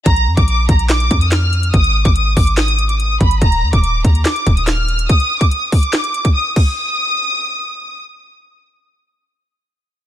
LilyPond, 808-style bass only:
\new Staff \with { instrumentName = "808-style bass" } { \clef bass \time 4/4 \key bes \phrygian \tempo 4 = 143 bes,,8 f,16 bes,,8. bes,,4 f,4. | aes,,8. aes,,8. aes,,2 aes,,8 | ees,,8 ees,16 ees,,8. ees,8 r8 ees,,4. | r1 |
r1 | r1 | }